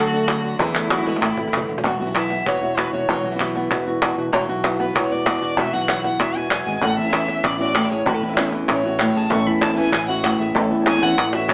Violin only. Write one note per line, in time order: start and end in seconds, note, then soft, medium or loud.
0.00 0.59 F#4 loud
0.60 1.18 E4 medium
1.22 1.66 E4 medium
2.17 2.49 E5 medium
2.47 2.79 C#5 medium
2.78 2.93 B4 medium
2.93 3.22 C#5 medium
4.33 4.40 C#5 loud
4.81 4.97 B4 medium
4.96 5.13 C#5 medium
5.12 5.59 D5 medium
5.58 5.75 E5 medium
5.73 6.04 F#5 medium
6.05 6.22 F#5 medium
6.21 6.38 E5 medium
6.36 6.84 G#5 medium
6.83 6.97 F#5 medium
6.98 7.46 E5 medium
7.45 7.60 D5 medium
7.61 7.89 D5 medium
7.91 8.08 C#5 medium
8.07 8.38 B4 medium
8.71 9.17 C#5 medium
9.16 9.33 A5 loud
9.31 9.48 C#6 loud
9.47 9.63 B5 medium
9.62 9.77 A5 medium
9.77 10.07 G#5 loud
10.09 10.38 F#5 medium
10.40 10.55 E5 medium
10.87 11.05 G#5 loud
11.03 11.34 F#5 loud
11.35 11.52 E5 medium
11.50 11.54 C#5 medium